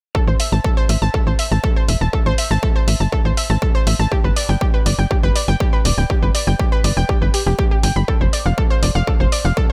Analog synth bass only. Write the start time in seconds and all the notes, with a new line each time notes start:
0.28 A1
0.52 A1
0.89 A1
1.02 A1
1.27 A1
1.52 A1
1.88 E1
2.01 E1
2.26 A1
2.51 A1
2.88 A1
3.00 G1
3.25 A1
3.50 A1
3.87 A1
3.99 A1
4.24 G1
4.49 G1
4.86 G1
4.99 G1
5.23 G1
5.48 G1
5.85 D1
5.98 D1
6.22 G1
6.47 G1
6.84 G1
6.97 F1
7.22 G1
7.47 F1
7.83 G1
7.96 G1
8.21 F1
8.46 F1
8.83 F1
8.95 F1
9.20 F1
9.45 F1